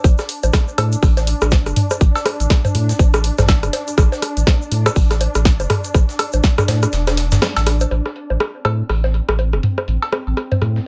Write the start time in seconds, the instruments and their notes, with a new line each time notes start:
Already playing: synth drone D4
0.04 sub bass A1, kick, closed hi-hat, low bongo, shaker
0.18 cross-stick, snare, shaker
0.29 closed hi-hat, open hi-hat
0.43 sub bass A1, closed hi-hat, low bongo, shaker
0.53 kick, cross-stick, snare, closed hi-hat, shaker
0.68 shaker
0.78 sub bass A2, cross-stick, closed hi-hat, open hi-hat, cowbell, low bongo
0.92 closed hi-hat, shaker
1.03 sub bass A1, kick, cross-stick, open hi-hat, shaker
1.17 snare, closed hi-hat, low bongo, shaker
1.27 closed hi-hat, open hi-hat
1.42 sub bass A1, cross-stick, closed hi-hat, shaker
1.51 kick, snare, closed hi-hat, low bongo, shaker
1.66 sub bass E1, cross-stick, closed hi-hat, shaker
1.76 closed hi-hat, mid tom, open hi-hat
1.91 cross-stick, closed hi-hat, low bongo, shaker
2.01 sub bass A1, kick, closed hi-hat, shaker
2.15 snare, cowbell, shaker
2.26 cross-stick, closed hi-hat, open hi-hat, low bongo
2.40 sub bass A1, closed hi-hat, shaker
2.50 kick, cross-stick, snare, closed hi-hat, shaker
2.65 closed hi-hat, mid tom, low bongo, shaker
2.75 sub bass A2, closed hi-hat, open hi-hat
2.89 snare, closed hi-hat, shaker
2.99 sub bass A1, kick, closed hi-hat, low bongo, shaker
3.14 cross-stick, closed hi-hat, shaker
3.24 closed hi-hat, open hi-hat
3.38 sub bass A1, cross-stick, snare, closed hi-hat, mid tom, low bongo, shaker
3.48 kick, snare, closed hi-hat, cowbell, shaker
3.63 sub bass E1, cross-stick, closed hi-hat, shaker
3.73 snare, closed hi-hat, open hi-hat, low bongo
3.88 closed hi-hat, shaker
3.98 sub bass A1, kick, cross-stick, closed hi-hat, shaker
4.12 snare, low bongo, shaker
4.22 cross-stick, closed hi-hat, open hi-hat
4.37 sub bass A1, closed hi-hat, shaker
4.47 kick, cross-stick, snare, closed hi-hat, low bongo, shaker
4.62 shaker
4.72 sub bass A2, closed hi-hat, open hi-hat
4.86 cross-stick, closed hi-hat, cowbell, low bongo, shaker
4.96 sub bass A1, kick, open hi-hat, shaker
5.11 cross-stick, snare, closed hi-hat, shaker
5.21 closed hi-hat, open hi-hat, low bongo
5.35 sub bass A1, cross-stick, closed hi-hat, shaker
5.45 kick, snare, closed hi-hat, shaker
5.60 sub bass E1, closed hi-hat, low bongo, shaker
5.70 cross-stick, closed hi-hat, mid tom, open hi-hat
5.84 closed hi-hat, shaker
5.94 sub bass A1, kick, cross-stick, closed hi-hat, low bongo, shaker
6.09 snare, shaker
6.19 cross-stick, closed hi-hat, open hi-hat, cowbell
6.32 sub bass A1, closed hi-hat, low bongo, shaker
6.43 kick, snare, closed hi-hat, shaker
6.58 cross-stick, closed hi-hat, mid tom, shaker
6.68 sub bass A2, snare, closed hi-hat, open hi-hat, low bongo
6.83 cross-stick, closed hi-hat, shaker
6.93 sub bass E1, snare, closed hi-hat, shaker
7.07 cross-stick, snare, closed hi-hat, low bongo, shaker
7.17 snare, closed hi-hat, open hi-hat
7.32 sub bass A1, snare, closed hi-hat, mid tom, shaker
7.42 cross-stick, snare, closed hi-hat, low bongo, shaker
7.56 sub bass A1, snare, closed hi-hat, cowbell, shaker
7.67 cross-stick, snare, closed hi-hat, open hi-hat
7.80 closed hi-hat, low bongo, shaker
7.91 sub bass A1, synth drone C4, closed hi-hat, low bongo
8.06 cross-stick, snare
8.16 closed hi-hat, open hi-hat
8.30 sub bass A1, low bongo
8.40 cross-stick, closed hi-hat
8.65 sub bass A2, cross-stick, closed hi-hat, cowbell, low bongo
8.89 sub bass A1, cross-stick, open hi-hat
9.04 snare, low bongo
9.14 closed hi-hat
9.29 sub bass A1, cross-stick
9.39 closed hi-hat, low bongo
9.53 sub bass E1, cross-stick
9.63 closed hi-hat, mid tom, open hi-hat
9.78 cross-stick, low bongo
9.88 sub bass A1, closed hi-hat
10.02 snare, cowbell
10.12 cross-stick, closed hi-hat, low bongo
10.27 sub bass A1
10.37 cross-stick, closed hi-hat
10.52 closed hi-hat, mid tom, low bongo
10.62 sub bass A2, cross-stick, closed hi-hat
10.76 snare